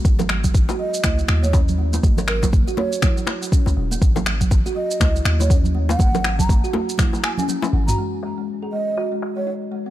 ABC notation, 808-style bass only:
X:1
M:4/4
L:1/16
Q:"Swing 16ths" 1/4=121
K:F#mix
V:1 name="808-style bass" clef=bass
G,,,4 G,,, z3 C,, z D,,6 | G,,,4 G,,, z8 C,, D,,, z | G,,,4 G,,, z3 C,, z D,,6 | G,,,4 G,,, z8 z G,,, z |
z16 |]